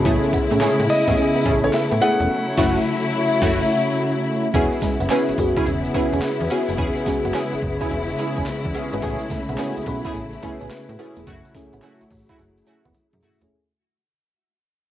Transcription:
Already playing: C#3 G#3
0.05 A1 A3 B3 C#4 E4 G#4, kick, closed hi-hat, tambourine
0.24 muted clean electric guitar stroke, closed hi-hat
0.33 A2 B3, kick, closed hi-hat, tambourine
0.51 A2 C#4, closed hi-hat
0.61 A2 A3 C#4 G#4, snare, clap, closed hi-hat, tambourine
0.79 A2, closed hi-hat
0.89 D#5, muted clean electric guitar stroke, open hi-hat, tambourine
1.08 A1 A3 B3 C#4 G#4, kick, closed hi-hat
1.17 B3 C#4 E4 G#4, closed hi-hat
1.36 B3, closed hi-hat
1.45 A1 A3 C#4 G#4, muted clean electric guitar stroke, kick, closed hi-hat, tambourine
1.63 B3 C#4 E4 A4 C#5, closed hi-hat
1.73 E5, muted clean electric guitar stroke, snare, clap, closed hi-hat, tambourine
1.91 A2 B3, closed hi-hat
2.01 A3 B3 C#4 E4 G#4 F#5, closed hi-hat, tambourine
2.20 E1, closed hi-hat
2.29 F#3 E4
2.57 F#1 A3 C#4 E4 F#4, kick, snare, crash
3.42 F#1 A3 C#4 E4 F#4, kick, snare, crash
4.54 E1 C#3 G#3 B3 C#4 E4 F#4 G#4, kick, closed hi-hat, tambourine
4.73 muted clean electric guitar stroke, closed hi-hat
4.82 G#3, kick, snare, closed hi-hat, tambourine
5.00 F#1 B3, closed hi-hat
5.10 B3 C#4 E4 F#4 G#4 B4, snare, clap, closed hi-hat, tambourine
5.29 F#1, muted clean electric guitar stroke, closed hi-hat
5.38 F#1 B3 C#4 F#4 G#4, kick, closed hi-hat, tambourine
5.57 C#4 E4 G#4, kick, closed hi-hat
5.66 E1, muted clean electric guitar stroke, closed hi-hat
5.85 closed hi-hat
5.94 B3 C#4 E4 F#4 G#4 B4, kick, closed hi-hat, tambourine
6.13 E1 C#4, closed hi-hat
6.22 muted clean electric guitar stroke, snare, clap, closed hi-hat, tambourine
6.40 E2, closed hi-hat
6.50 B3 C#4 E4 F#4 G#4, closed hi-hat, tambourine
6.68 F#1 G#3, closed hi-hat
6.78 E1 C#4 E4 G#4, kick, closed hi-hat, tambourine
6.97 muted clean electric guitar stroke, closed hi-hat
7.06 G#3 B3 C#4 F#4 G#4, kick, snare, closed hi-hat, tambourine
7.25 F#1 B3, closed hi-hat
7.34 C#4 E4 G#4, snare, clap, closed hi-hat, tambourine
7.53 F#1, muted clean electric guitar stroke, closed hi-hat
7.62 F#1, kick, closed hi-hat, tambourine
7.80 C#4 E4 G#4, kick, closed hi-hat
7.91 E1, muted clean electric guitar stroke, closed hi-hat
8.09 closed hi-hat
8.18 C#4 E4 G#4, closed hi-hat, tambourine
8.37 E1 C#4, kick, closed hi-hat
8.46 muted clean electric guitar stroke, snare, clap, closed hi-hat, tambourine
8.65 E2, kick, closed hi-hat
8.74 B3 C#4 E4 G#4, closed hi-hat, tambourine
8.93 G#1 G#3 B3 C#4 F#4 B4, closed hi-hat
9.02 A1 A3 B3 C#4 E4 G#4, kick, closed hi-hat, tambourine
9.21 muted clean electric guitar stroke, closed hi-hat
9.30 A3, kick, snare, closed hi-hat, tambourine
9.49 B1 B3, closed hi-hat
9.58 A3 B3 C#4 E4 F#4 G#4, snare, clap, closed hi-hat, tambourine
9.77 B1, muted clean electric guitar stroke, closed hi-hat
9.86 B1 B3 C#4 E4 B4, kick, closed hi-hat, tambourine
10.05 A3 C#4 E4 G#4, kick, closed hi-hat
10.15 A1, muted clean electric guitar stroke, closed hi-hat
10.33 closed hi-hat
10.43 A3 B3 C#4 E4 G#4, kick, closed hi-hat, tambourine
10.61 A1 C#4, closed hi-hat
10.71 muted clean electric guitar stroke, snare, clap, closed hi-hat, tambourine
10.89 A2, closed hi-hat
10.99 A3 B3 C#4 E4 G#4, closed hi-hat, tambourine
11.17 E1 A3, closed hi-hat
11.27 F#1 F#3 A3 E4 F#4, kick, closed hi-hat, tambourine
11.45 muted clean electric guitar stroke, closed hi-hat
11.54 A3 C#4 E4 G#4, kick, snare, closed hi-hat, tambourine
11.73 A1 B3, closed hi-hat
11.82 A3 C#4 E4 F#4, snare, clap, closed hi-hat, tambourine
12.01 A1, muted clean electric guitar stroke, closed hi-hat
12.11 A1, kick, open hi-hat, tambourine
12.29 A3 E4 F#4, kick, closed hi-hat
12.39 F#1, muted clean electric guitar stroke, closed hi-hat
12.58 closed hi-hat
12.67 A3 C#4 E4 F#4, closed hi-hat, tambourine
12.85 F#1 B3, kick, closed hi-hat
12.94 muted clean electric guitar stroke, closed hi-hat, high tom
13.13 F#2, closed hi-hat, mid tom
13.23 A3 E4 F#4, mid tom, open hi-hat
13.41 E1 A3 C#4 E4 G#4, closed hi-hat, floor tom

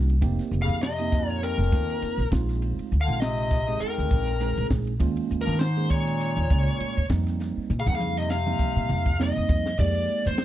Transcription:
Already playing: C2 A#3 C#4 D#4 F#4
0.10 ride
0.22 F1 A#3 C4 D#4 G4, kick, hi-hat pedal, ride
0.39 snare, ride
0.51 F1, hi-hat pedal
0.62 C#3 F5
0.68 F2, ride
0.81 C3 D#5, snare, hi-hat pedal, ride
0.99 A#3 C4 D#4 G4, ride
1.12 kick, snare, hi-hat pedal
1.24 A#2
1.30 C#5, ride
1.42 F2 A#4, hi-hat pedal, ride
1.58 F1, ride
1.72 D#2 A#3 C4 D#4 F4, kick, hi-hat pedal
1.90 ride
2.02 muted upright bass stroke, hi-hat pedal, ride
2.18 A#1, ride
2.31 A#1 G#3 C4 D#4 F4, kick, snare, hi-hat pedal
2.49 snare, ride
2.62 hi-hat pedal, ride
2.78 muted upright bass stroke, ride
2.92 D2, hi-hat pedal
3.01 D3 F5
3.08 A#1 G#3 C4 D#4 F4, ride
3.20 C3 D#5, snare, hi-hat pedal, ride
3.38 ride
3.51 kick, snare, hi-hat pedal
3.68 G#3 C4 D#4 G#4, ride
3.80 F2 A#4, muted upright bass stroke, hi-hat pedal, ride
3.98 D2, ride
4.11 A#1, kick, hi-hat pedal
4.27 ride
4.40 G#3 C4 D#4 G#4, snare, hi-hat pedal, ride
4.57 A#1, ride
4.70 A#1, kick, snare, hi-hat pedal
4.87 ride
4.99 D#2 G#3 A#3 C#4 F4, kick, hi-hat pedal, ride
5.17 ride
5.31 D#2, hi-hat pedal
5.42 G2 A#4
5.47 D#3, ride
5.59 G#2 C5, snare, hi-hat pedal, ride
5.77 G#3 A#3 C#4 G#4, ride
5.90 A#2 C#5, kick, hi-hat pedal
6.07 ride
6.21 hi-hat pedal, ride
6.37 D#2, ride
6.50 C#2 G#3 A#3 C#4 F4, kick, hi-hat pedal
6.67 ride
6.80 muted upright bass stroke, hi-hat pedal, ride
6.97 D#2, ride
7.10 F2 G3 A#3 C4 D#4, kick, snare, hi-hat pedal
7.27 snare, ride
7.40 snare, hi-hat pedal
7.57 muted upright bass stroke
7.70 A#2, hi-hat pedal, high tom
7.80 C#3 F5
7.86 F2 D#3 G3 A#3 C4 D#4 F#5, kick
7.95 C#3 F5
8.00 hi-hat pedal, mid tom
8.18 C3 D#5
8.30 C3 F5, snare, hi-hat pedal
8.46 G3 A#3 C4 D#4, mid tom
8.59 muted upright bass stroke, kick, hi-hat pedal
8.76 A#2
8.89 F2, hi-hat pedal, mid tom
9.06 kick
9.19 G3 A#3 C4 D#4 D#5, snare, hi-hat pedal
9.37 F2
9.49 F2, kick, hi-hat pedal
9.66 snare
9.78 F2 F3 G#3 A#3 C4 D#4 G4 A#4 D5 G5, kick, crash
9.94 ride
10.08 hi-hat pedal
10.25 F2 C5, snare, ride
10.38 snare, ride

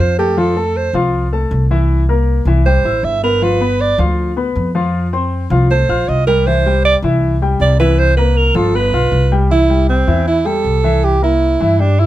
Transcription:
Already playing: F4 F5 F6
0.00 F2 C5
0.18 A3 G4 A4 A5
0.37 F3 F4 A4 F5
0.56 A3 A4 A5
0.77 C5
0.93 C2 F3 F4 F5
1.32 A3 A4 A5
1.51 C2
1.71 E3 E4 E5
2.09 A#3 A#4 A#5
2.45 C2 E3 E4 E5
2.66 G3 G4 C5 G5
2.84 A1 E4 E5 E6
3.03 G1 E5
3.23 B3 A#4 B4 B5
3.42 F3 F4 B4 F5
3.61 B3 B4 B5
3.81 D5
3.98 D2 F3 F4 F5
4.37 B3 B4 B5
4.56 F2
4.75 F3 F4 F5
5.13 C4 C5 C6
5.50 C2 F3 F4 F5
5.70 A3 A4 C5 A5
5.89 A#1 F4 F5 F6
6.08 C2 D#5
6.27 G3 G4 A#4 G5
6.47 E3 E4 C5 E5
6.66 G3 G4 G5
6.85 D5
7.02 C2 E3 E4 E5
7.42 G3 G4 G5
7.60 C2 D5
7.80 E3 E4 B4 E5
7.99 C5
8.17 A#3 A#4 B4 A#5
8.37 A#4
8.54 G1 F3 F4 A4 F5
8.75 B3 B4 B5
8.92 B1 F4 F5 F6
9.12 C2
9.32 G3 G4 G5
9.50 E3 E4 E5
9.70 G3 G4 G5
9.89 C4
10.07 E2 E3 E4 E5
10.28 E4
10.45 G3 G4 A4 G5
10.64 C2
10.84 E3 E4 E5
11.04 G4
11.22 A#3 E4 A#4 A#5
11.60 G2 E3 E4 E5
11.80 G3 D4 G4 G5
11.99 E4 E5 E6

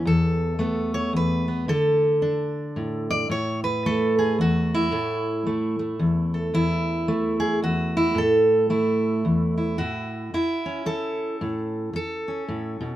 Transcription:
0.05 E2 A4
0.59 A3 B3
0.94 C#5
1.13 E2 B4
1.48 B3
1.68 D3 A4
2.22 D4
2.76 A2
3.11 D5
3.30 A2 C#5
3.64 B4
3.86 A3 A4
4.19 G#4
4.38 E2 F#4
4.74 E4
4.91 A2 A3
5.46 A3
5.79 A3
5.99 E2
6.34 A4
6.54 E2 E4
7.08 A3
7.40 G#4
7.62 E2 F#4
7.97 E4
8.15 A2 A4
8.70 A3 E4
9.25 E2
9.57 E4
9.78 A2 F#4
10.34 E4, muted steel-string acoustic guitar stroke
10.66 C#4
10.86 A4, muted steel-string acoustic guitar stroke
11.41 A2
11.93 A4, muted steel-string acoustic guitar stroke
12.28 C#4
12.48 A2
12.81 B2

